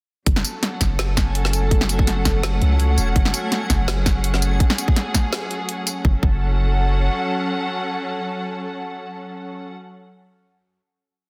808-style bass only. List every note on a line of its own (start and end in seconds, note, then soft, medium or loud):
0.27 0.43 F#1 loud
0.81 2.24 F#1 loud
2.25 2.60 F#1 loud
2.62 2.97 C#2 loud
2.98 3.14 E1 medium
3.16 3.33 F#1 loud
3.70 4.59 F#1 loud
6.05 6.15 F#1 loud
6.23 7.09 F#1 loud